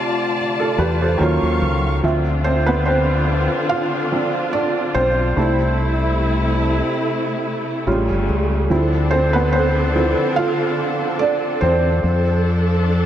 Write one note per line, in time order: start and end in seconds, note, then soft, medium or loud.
0.00 1.15 C3 medium
0.00 1.14 D3 medium
0.00 1.16 A3 medium
0.00 1.17 C4 medium
0.00 0.36 F4 medium
0.00 1.17 F4 medium
0.00 1.17 D5 medium
0.00 1.17 A5 medium
0.60 0.78 F4 medium
0.60 0.78 A4 medium
0.78 1.16 E2 medium
0.78 1.00 G4 medium
0.78 1.00 B4 medium
1.01 1.41 A4 medium
1.01 1.41 C5 medium
1.18 1.40 D#2 loud
1.18 2.02 D#3 medium
1.18 2.03 F#3 medium
1.18 2.02 F#3 medium
1.18 2.03 A#3 medium
1.18 2.04 C#4 medium
1.18 2.02 F5 medium
1.18 2.02 C#6 medium
1.23 2.05 F4 medium
1.42 1.60 D#2 medium
1.62 2.00 C#2 medium
2.03 3.47 D2 loud
2.03 5.33 D3 medium
2.03 4.10 F3 medium
2.03 5.33 C4 medium
2.03 2.45 C4 medium
2.03 5.33 D4 medium
2.03 5.33 F4 medium
2.03 5.33 E5 medium
2.44 2.67 C4 medium
2.44 2.68 C5 medium
2.66 2.86 B3 medium
2.66 2.87 B4 medium
2.86 3.66 C4 medium
2.86 3.72 C5 medium
3.69 4.50 F4 medium
3.69 4.56 F5 loud
4.12 4.49 F3 medium
4.12 4.50 C4 soft
4.12 4.50 D4 medium
4.53 4.93 D4 medium
4.53 4.96 D5 loud
4.95 5.33 B1 medium
4.95 8.25 C4 medium
4.95 8.24 C5 loud
5.36 6.80 C2 loud
5.36 7.84 C3 medium
5.36 7.84 A3 medium
5.36 5.93 A3 medium
5.36 5.94 D4 medium
5.36 7.84 E4 medium
5.36 5.94 E4 medium
7.87 8.07 A1 loud
7.87 8.69 C#3 medium
7.87 8.66 G3 medium
7.87 8.69 G3 medium
7.87 8.69 A3 medium
7.87 8.66 C#4 medium
7.87 8.67 F4 medium
8.10 8.27 G1 medium
8.29 8.66 C#2 medium
8.70 10.14 D2 loud
8.70 12.00 D3 medium
8.70 9.91 F3 medium
8.70 12.00 C4 medium
8.70 9.11 C4 medium
8.70 12.00 D4 medium
8.70 9.92 E4 medium
8.70 12.00 A4 medium
9.11 9.33 C4 medium
9.11 9.34 C5 loud
9.33 9.53 B3 medium
9.33 9.53 B4 medium
9.53 9.94 C4 medium
9.53 10.39 C5 loud
9.95 10.33 F3 medium
9.95 10.33 C4 soft
9.95 10.33 E4 medium
10.36 11.17 F4 medium
10.36 11.22 F5 loud
11.19 11.60 D4 medium
11.19 11.63 D5 loud
11.61 12.00 E2 medium
11.61 13.06 C4 medium
11.61 13.06 C5 medium
12.03 13.06 F2 loud
12.03 13.06 F3 medium
12.03 13.06 D4 medium
12.03 13.06 A4 medium